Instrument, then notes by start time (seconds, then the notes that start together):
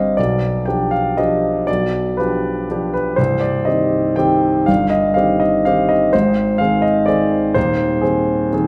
grand piano
Already playing: G1 G2 G3 C4 G4 D#5 F5
0.17 B1 B2 D5
0.66 F3 D4 G4 G5
0.91 F5
1.17 F3 D4 G4 D#5
1.67 B1 B2 D5
2.17 F3 D4 G4 B4
2.71 F3 D4 G4
2.94 B4
3.16 C1 C2 C5
3.41 D5
3.65 D#3 C4 G4 D#5
4.16 D#3 C4 G4 G5
4.66 G1 G2 F5
4.90 D#5
5.14 D#3 C4 G4 F5
5.40 D#5
5.65 D#3 C4 G4 F5
5.89 D#5
6.13 G#1 G#2 C5
6.58 D#3 C4 G#4 F5
6.82 D#5
7.06 D#3 C4 G#4 D5
7.54 D#1 D#2 C5
8.01 D#3 C4 G#4
8.53 D#3 C4 G#4